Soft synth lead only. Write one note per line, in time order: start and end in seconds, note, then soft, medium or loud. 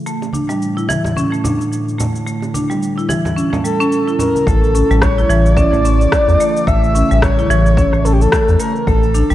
3.65 4.16 A4 medium
4.19 4.48 A#4 medium
4.46 5.03 A4 loud
5.02 5.46 C#5 loud
5.45 6.68 D5 loud
6.67 7.23 E5 loud
7.22 8.06 C#5 loud
8.05 8.14 A4 loud
8.12 8.22 G4 medium
8.21 8.59 A4 loud
8.60 8.88 A#4 medium
8.87 9.35 A4 loud